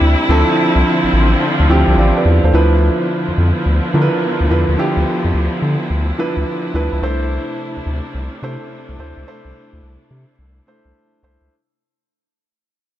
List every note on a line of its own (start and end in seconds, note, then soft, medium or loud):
0.00 0.16 D2 medium
0.00 0.27 C3 loud
0.00 0.31 G3 medium
0.00 0.27 A3 medium
0.00 0.30 C4 medium
0.00 0.27 D4 medium
0.00 0.30 D4 medium
0.00 0.30 E4 medium
0.00 2.49 E4 loud
0.00 0.31 A4 loud
0.29 0.44 D2 loud
0.29 2.51 D3 medium
0.29 2.51 F3 loud
0.29 1.34 F3 medium
0.29 2.51 C4 medium
0.29 1.34 C4 medium
0.29 1.34 D4 medium
0.29 1.34 E4 medium
0.29 1.34 A4 loud
0.76 0.83 C2 loud
1.04 1.08 A1 medium
1.13 1.35 A1 loud
1.60 1.67 D2 medium
1.69 1.84 D2 loud
1.69 2.48 F3 medium
1.69 2.48 C4 medium
1.69 2.48 D4 medium
1.69 2.48 E4 medium
1.69 2.49 G4 loud
1.88 1.95 C2 medium
1.97 2.12 A1 loud
1.97 2.15 D5 medium
1.97 2.15 F5 medium
2.17 2.43 B4 medium
2.17 2.43 D5 medium
2.25 2.40 E2 loud
2.44 2.51 D#2 medium
2.44 2.71 A4 medium
2.44 2.71 C5 medium
2.53 2.90 D2 loud
2.53 6.98 D3 medium
2.53 3.58 F3 medium
2.53 6.98 F3 loud
2.53 6.98 B3 medium
2.53 3.58 D4 medium
2.53 11.47 E4 medium
2.53 3.58 E4 medium
2.53 3.59 B4 medium
3.28 3.32 F2 soft
3.38 3.52 F2 loud
3.66 3.80 D2 medium
3.94 4.08 D3 loud
3.94 4.46 F3 medium
3.94 4.46 D4 medium
3.94 4.47 E4 medium
3.94 4.03 A#4 medium
4.02 4.50 B4 loud
4.41 4.48 D2 loud
4.50 4.64 E2 loud
4.50 4.76 F3 medium
4.50 4.76 D4 medium
4.50 4.77 E4 medium
4.50 4.77 B4 medium
4.69 4.76 D#2 medium
4.78 5.83 F3 medium
4.78 5.83 D4 medium
4.78 5.83 E4 medium
4.78 5.83 G4 loud
4.97 5.04 D2 loud
5.25 5.32 F2 loud
5.34 5.48 D2 loud
5.62 5.76 D3 loud
5.90 6.12 D2 medium
6.18 6.71 F3 medium
6.18 6.71 D4 medium
6.18 6.71 E4 medium
6.18 6.71 B4 loud
6.37 6.44 D2 medium
6.74 6.89 D2 medium
6.74 7.00 F3 medium
6.74 7.01 D4 medium
6.74 7.01 E4 medium
6.74 7.01 B4 medium
6.93 7.00 C#2 medium
7.02 7.38 C2 loud
7.02 11.47 C3 medium
7.02 11.47 A3 medium
7.02 8.07 A3 medium
7.02 11.47 D4 medium
7.02 8.07 D4 medium
7.02 8.07 E4 medium
7.02 8.07 C5 medium
7.77 7.81 D2 medium
7.86 8.01 D2 loud
8.15 8.29 C2 loud
8.43 8.57 C3 loud
8.43 8.95 A3 medium
8.43 8.95 D4 medium
8.43 8.95 E4 medium
8.43 8.95 C5 medium
8.89 8.96 C2 medium
8.99 9.13 D2 medium
8.99 9.25 A3 medium
8.99 9.25 D4 medium
8.99 9.25 E4 medium
8.99 9.25 C5 medium
9.17 9.24 C#2 loud
9.27 10.31 A3 medium
9.27 10.31 D4 medium
9.27 10.32 E4 medium
9.27 10.32 C5 loud
9.45 9.52 C2 medium
9.73 9.81 D2 medium
9.83 9.97 C2 loud
10.11 10.25 C3 loud
10.39 10.61 C2 loud
10.67 11.19 A3 medium
10.67 11.19 D4 medium
10.67 11.19 E4 medium
10.67 11.20 C5 medium
10.85 10.93 C2 medium
11.23 11.37 C2 loud
11.23 11.49 A3 medium
11.23 11.49 D4 medium
11.23 11.49 E4 medium
11.23 11.50 C5 medium
11.41 11.49 C#2 medium